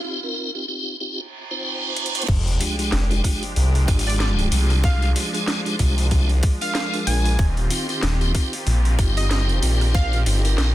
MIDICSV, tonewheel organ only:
0, 0, Header, 1, 2, 480
1, 0, Start_track
1, 0, Tempo, 638298
1, 1717, Time_signature, 4, 2, 24, 8
1, 8082, End_track
2, 0, Start_track
2, 0, Title_t, "Tonewheel organ"
2, 0, Program_c, 0, 16
2, 33, Note_on_c, 0, 65, 70
2, 34, Note_on_c, 0, 60, 76
2, 34, Note_on_c, 0, 63, 69
2, 34, Note_on_c, 0, 67, 86
2, 153, Note_off_c, 0, 65, 0
2, 154, Note_off_c, 0, 60, 0
2, 154, Note_off_c, 0, 63, 0
2, 154, Note_off_c, 0, 67, 0
2, 174, Note_on_c, 0, 63, 84
2, 174, Note_on_c, 0, 65, 84
2, 175, Note_on_c, 0, 70, 103
2, 176, Note_on_c, 0, 60, 89
2, 381, Note_off_c, 0, 65, 0
2, 382, Note_off_c, 0, 60, 0
2, 382, Note_off_c, 0, 63, 0
2, 382, Note_off_c, 0, 70, 0
2, 414, Note_on_c, 0, 67, 110
2, 415, Note_on_c, 0, 63, 91
2, 415, Note_on_c, 0, 65, 91
2, 416, Note_on_c, 0, 60, 96
2, 492, Note_off_c, 0, 63, 0
2, 492, Note_off_c, 0, 65, 0
2, 492, Note_off_c, 0, 67, 0
2, 493, Note_off_c, 0, 60, 0
2, 514, Note_on_c, 0, 65, 86
2, 514, Note_on_c, 0, 67, 99
2, 515, Note_on_c, 0, 60, 93
2, 515, Note_on_c, 0, 63, 83
2, 725, Note_off_c, 0, 63, 0
2, 725, Note_off_c, 0, 65, 0
2, 725, Note_off_c, 0, 67, 0
2, 726, Note_off_c, 0, 60, 0
2, 756, Note_on_c, 0, 60, 81
2, 756, Note_on_c, 0, 63, 80
2, 756, Note_on_c, 0, 65, 76
2, 756, Note_on_c, 0, 67, 93
2, 906, Note_off_c, 0, 60, 0
2, 906, Note_off_c, 0, 63, 0
2, 906, Note_off_c, 0, 65, 0
2, 906, Note_off_c, 0, 67, 0
2, 1135, Note_on_c, 0, 65, 79
2, 1135, Note_on_c, 0, 72, 100
2, 1136, Note_on_c, 0, 60, 90
2, 1136, Note_on_c, 0, 63, 81
2, 1704, Note_off_c, 0, 60, 0
2, 1704, Note_off_c, 0, 65, 0
2, 1704, Note_off_c, 0, 72, 0
2, 1705, Note_off_c, 0, 63, 0
2, 1957, Note_on_c, 0, 62, 76
2, 1958, Note_on_c, 0, 65, 78
2, 1958, Note_on_c, 0, 67, 94
2, 1959, Note_on_c, 0, 56, 84
2, 2075, Note_off_c, 0, 62, 0
2, 2076, Note_off_c, 0, 56, 0
2, 2076, Note_off_c, 0, 65, 0
2, 2076, Note_off_c, 0, 67, 0
2, 2097, Note_on_c, 0, 56, 76
2, 2097, Note_on_c, 0, 62, 68
2, 2097, Note_on_c, 0, 65, 69
2, 2097, Note_on_c, 0, 67, 85
2, 2212, Note_off_c, 0, 56, 0
2, 2212, Note_off_c, 0, 62, 0
2, 2212, Note_off_c, 0, 65, 0
2, 2212, Note_off_c, 0, 67, 0
2, 2334, Note_on_c, 0, 62, 76
2, 2334, Note_on_c, 0, 65, 77
2, 2334, Note_on_c, 0, 67, 92
2, 2335, Note_on_c, 0, 56, 83
2, 2421, Note_off_c, 0, 56, 0
2, 2421, Note_off_c, 0, 62, 0
2, 2421, Note_off_c, 0, 65, 0
2, 2421, Note_off_c, 0, 67, 0
2, 2436, Note_on_c, 0, 56, 78
2, 2436, Note_on_c, 0, 62, 70
2, 2436, Note_on_c, 0, 67, 83
2, 2437, Note_on_c, 0, 65, 68
2, 2586, Note_off_c, 0, 56, 0
2, 2586, Note_off_c, 0, 67, 0
2, 2587, Note_off_c, 0, 62, 0
2, 2587, Note_off_c, 0, 65, 0
2, 2914, Note_on_c, 0, 56, 97
2, 2914, Note_on_c, 0, 67, 107
2, 2915, Note_on_c, 0, 62, 88
2, 2915, Note_on_c, 0, 65, 89
2, 3371, Note_off_c, 0, 56, 0
2, 3371, Note_off_c, 0, 67, 0
2, 3372, Note_off_c, 0, 62, 0
2, 3372, Note_off_c, 0, 65, 0
2, 3393, Note_on_c, 0, 62, 74
2, 3393, Note_on_c, 0, 67, 90
2, 3394, Note_on_c, 0, 56, 83
2, 3394, Note_on_c, 0, 65, 80
2, 3851, Note_off_c, 0, 56, 0
2, 3851, Note_off_c, 0, 62, 0
2, 3851, Note_off_c, 0, 65, 0
2, 3851, Note_off_c, 0, 67, 0
2, 3875, Note_on_c, 0, 56, 74
2, 3875, Note_on_c, 0, 65, 71
2, 3876, Note_on_c, 0, 62, 75
2, 3876, Note_on_c, 0, 67, 84
2, 3994, Note_off_c, 0, 56, 0
2, 3994, Note_off_c, 0, 65, 0
2, 3995, Note_off_c, 0, 62, 0
2, 3995, Note_off_c, 0, 67, 0
2, 4011, Note_on_c, 0, 56, 91
2, 4011, Note_on_c, 0, 62, 86
2, 4011, Note_on_c, 0, 65, 86
2, 4012, Note_on_c, 0, 68, 101
2, 4220, Note_off_c, 0, 56, 0
2, 4220, Note_off_c, 0, 62, 0
2, 4220, Note_off_c, 0, 65, 0
2, 4220, Note_off_c, 0, 68, 0
2, 4251, Note_on_c, 0, 56, 97
2, 4252, Note_on_c, 0, 62, 86
2, 4252, Note_on_c, 0, 65, 86
2, 4252, Note_on_c, 0, 67, 104
2, 4330, Note_off_c, 0, 56, 0
2, 4330, Note_off_c, 0, 65, 0
2, 4331, Note_off_c, 0, 62, 0
2, 4331, Note_off_c, 0, 67, 0
2, 4355, Note_on_c, 0, 56, 91
2, 4355, Note_on_c, 0, 62, 80
2, 4356, Note_on_c, 0, 65, 86
2, 4356, Note_on_c, 0, 67, 102
2, 4566, Note_off_c, 0, 56, 0
2, 4566, Note_off_c, 0, 62, 0
2, 4566, Note_off_c, 0, 65, 0
2, 4566, Note_off_c, 0, 67, 0
2, 4594, Note_on_c, 0, 56, 84
2, 4594, Note_on_c, 0, 65, 76
2, 4594, Note_on_c, 0, 67, 93
2, 4595, Note_on_c, 0, 62, 78
2, 4745, Note_off_c, 0, 56, 0
2, 4745, Note_off_c, 0, 65, 0
2, 4745, Note_off_c, 0, 67, 0
2, 4746, Note_off_c, 0, 62, 0
2, 4972, Note_on_c, 0, 62, 77
2, 4973, Note_on_c, 0, 56, 89
2, 4973, Note_on_c, 0, 65, 80
2, 4974, Note_on_c, 0, 70, 95
2, 5543, Note_off_c, 0, 56, 0
2, 5543, Note_off_c, 0, 62, 0
2, 5543, Note_off_c, 0, 65, 0
2, 5544, Note_off_c, 0, 70, 0
2, 5796, Note_on_c, 0, 63, 79
2, 5797, Note_on_c, 0, 60, 84
2, 5798, Note_on_c, 0, 65, 80
2, 5798, Note_on_c, 0, 67, 95
2, 5915, Note_off_c, 0, 60, 0
2, 5915, Note_off_c, 0, 63, 0
2, 5916, Note_off_c, 0, 65, 0
2, 5916, Note_off_c, 0, 67, 0
2, 5934, Note_on_c, 0, 63, 71
2, 5934, Note_on_c, 0, 67, 84
2, 5935, Note_on_c, 0, 60, 77
2, 5935, Note_on_c, 0, 65, 71
2, 6051, Note_off_c, 0, 60, 0
2, 6051, Note_off_c, 0, 63, 0
2, 6051, Note_off_c, 0, 65, 0
2, 6051, Note_off_c, 0, 67, 0
2, 6173, Note_on_c, 0, 60, 82
2, 6173, Note_on_c, 0, 63, 76
2, 6173, Note_on_c, 0, 67, 93
2, 6174, Note_on_c, 0, 65, 75
2, 6260, Note_off_c, 0, 60, 0
2, 6260, Note_off_c, 0, 63, 0
2, 6260, Note_off_c, 0, 67, 0
2, 6261, Note_off_c, 0, 65, 0
2, 6276, Note_on_c, 0, 60, 79
2, 6276, Note_on_c, 0, 63, 70
2, 6276, Note_on_c, 0, 65, 69
2, 6276, Note_on_c, 0, 67, 86
2, 6426, Note_off_c, 0, 60, 0
2, 6426, Note_off_c, 0, 63, 0
2, 6426, Note_off_c, 0, 65, 0
2, 6426, Note_off_c, 0, 67, 0
2, 6758, Note_on_c, 0, 60, 97
2, 6758, Note_on_c, 0, 63, 87
2, 6759, Note_on_c, 0, 65, 88
2, 6759, Note_on_c, 0, 67, 109
2, 7213, Note_off_c, 0, 60, 0
2, 7213, Note_off_c, 0, 63, 0
2, 7214, Note_off_c, 0, 65, 0
2, 7214, Note_off_c, 0, 67, 0
2, 7235, Note_on_c, 0, 63, 75
2, 7236, Note_on_c, 0, 60, 86
2, 7236, Note_on_c, 0, 67, 95
2, 7237, Note_on_c, 0, 65, 76
2, 7692, Note_off_c, 0, 60, 0
2, 7692, Note_off_c, 0, 63, 0
2, 7692, Note_off_c, 0, 67, 0
2, 7693, Note_off_c, 0, 65, 0
2, 7716, Note_on_c, 0, 65, 71
2, 7717, Note_on_c, 0, 60, 78
2, 7717, Note_on_c, 0, 63, 72
2, 7717, Note_on_c, 0, 67, 85
2, 7835, Note_off_c, 0, 60, 0
2, 7835, Note_off_c, 0, 63, 0
2, 7835, Note_off_c, 0, 65, 0
2, 7835, Note_off_c, 0, 67, 0
2, 7854, Note_on_c, 0, 60, 89
2, 7856, Note_on_c, 0, 63, 81
2, 7856, Note_on_c, 0, 65, 84
2, 7856, Note_on_c, 0, 70, 103
2, 8062, Note_off_c, 0, 60, 0
2, 8062, Note_off_c, 0, 63, 0
2, 8062, Note_off_c, 0, 65, 0
2, 8063, Note_off_c, 0, 70, 0
2, 8082, End_track
0, 0, End_of_file